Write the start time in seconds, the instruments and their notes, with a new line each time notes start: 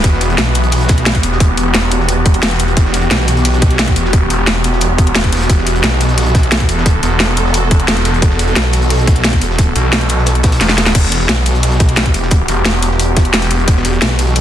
Already playing: synth drone E3 B3 F#4
0.04 detuned saw bass E1, synth drone G4, kick, closed hi-hat
0.13 snare
0.21 closed hi-hat
0.30 closed hi-hat
0.38 detuned saw bass B1, snare, closed hi-hat
0.55 closed hi-hat
0.63 closed hi-hat
0.72 closed hi-hat, open hi-hat
0.81 closed hi-hat
0.89 kick, snare, closed hi-hat
0.98 closed hi-hat
1.06 snare, closed hi-hat
1.14 kick, closed hi-hat
1.23 detuned saw bass E1, closed hi-hat
1.32 snare
1.40 kick, closed hi-hat
1.57 detuned saw bass E1, closed hi-hat
1.74 snare, closed hi-hat
1.91 closed hi-hat
2.00 snare
2.09 closed hi-hat
2.25 kick, closed hi-hat
2.34 closed hi-hat
2.42 detuned saw bass E1, snare, closed hi-hat
2.51 snare, closed hi-hat
2.59 closed hi-hat
2.68 closed hi-hat
2.77 detuned saw bass E1, kick, closed hi-hat
2.85 snare
2.94 closed hi-hat
3.02 closed hi-hat
3.11 detuned saw bass B1, snare, closed hi-hat
3.28 closed hi-hat
3.37 closed hi-hat
3.45 closed hi-hat, open hi-hat
3.54 closed hi-hat
3.62 kick, closed hi-hat
3.71 closed hi-hat
3.79 snare, closed hi-hat
3.88 kick, closed hi-hat
3.96 detuned saw bass E1, closed hi-hat
4.05 snare
4.13 kick, closed hi-hat
4.30 detuned saw bass E1, closed hi-hat
4.47 snare, closed hi-hat
4.64 closed hi-hat
4.72 snare
4.81 closed hi-hat
4.98 kick, closed hi-hat
5.07 closed hi-hat
5.15 detuned saw bass E1, snare, closed hi-hat
5.24 kick, snare, closed hi-hat
5.32 snare, closed hi-hat
5.37 snare, closed hi-hat
5.41 snare, closed hi-hat
5.50 detuned saw bass E1, synth drone A4, kick, closed hi-hat
5.58 snare
5.67 closed hi-hat
5.75 closed hi-hat
5.83 detuned saw bass B1, snare, closed hi-hat
6.01 closed hi-hat
6.09 closed hi-hat
6.18 closed hi-hat, open hi-hat
6.26 closed hi-hat
6.35 kick, snare, closed hi-hat
6.43 closed hi-hat
6.52 snare, closed hi-hat
6.60 kick, closed hi-hat
6.69 detuned saw bass E1, closed hi-hat
6.77 snare
6.86 kick, closed hi-hat
7.03 detuned saw bass E1, closed hi-hat
7.20 snare, closed hi-hat
7.37 closed hi-hat
7.46 snare
7.54 closed hi-hat
7.71 kick, closed hi-hat
7.80 closed hi-hat
7.88 detuned saw bass E1, snare, closed hi-hat
7.97 snare, closed hi-hat
8.05 closed hi-hat
8.14 closed hi-hat
8.22 detuned saw bass E1, kick, closed hi-hat
8.30 snare
8.39 closed hi-hat
8.47 closed hi-hat
8.55 detuned saw bass B1, snare, closed hi-hat
8.73 closed hi-hat
8.82 closed hi-hat
8.90 closed hi-hat, open hi-hat
8.99 closed hi-hat
9.07 kick, closed hi-hat
9.16 closed hi-hat
9.24 snare, closed hi-hat
9.33 kick, closed hi-hat
9.42 detuned saw bass E1, closed hi-hat
9.51 snare
9.59 kick, closed hi-hat
9.76 detuned saw bass B1, closed hi-hat
9.92 snare, closed hi-hat
10.01 closed hi-hat
10.09 closed hi-hat
10.18 snare
10.26 snare, closed hi-hat
10.35 closed hi-hat
10.43 kick, snare, closed hi-hat
10.52 snare, closed hi-hat
10.60 detuned saw bass E1, snare, closed hi-hat
10.69 snare, closed hi-hat
10.78 snare, closed hi-hat
10.86 snare, closed hi-hat
10.95 detuned saw bass E1, synth drone E3 B3 F#4 G4, kick, closed hi-hat, crash
11.03 snare
11.12 closed hi-hat
11.21 closed hi-hat
11.29 detuned saw bass B1, snare, closed hi-hat
11.46 closed hi-hat
11.55 closed hi-hat
11.63 closed hi-hat, open hi-hat
11.72 closed hi-hat
11.80 kick, closed hi-hat
11.89 closed hi-hat
11.96 snare, closed hi-hat
12.06 kick, closed hi-hat
12.14 detuned saw bass E1, closed hi-hat
12.23 snare
12.31 kick, closed hi-hat
12.48 detuned saw bass E1, closed hi-hat
12.65 snare, closed hi-hat
12.82 closed hi-hat
12.91 snare
13.00 closed hi-hat
13.16 kick, snare, closed hi-hat
13.25 closed hi-hat
13.33 detuned saw bass E1, snare, closed hi-hat
13.42 snare, closed hi-hat
13.51 closed hi-hat, open hi-hat
13.59 closed hi-hat
13.68 detuned saw bass E1, synth drone A4, kick, closed hi-hat
13.77 snare
13.85 closed hi-hat
13.93 closed hi-hat
14.01 detuned saw bass B1, snare, closed hi-hat
14.19 closed hi-hat
14.27 closed hi-hat
14.36 closed hi-hat, open hi-hat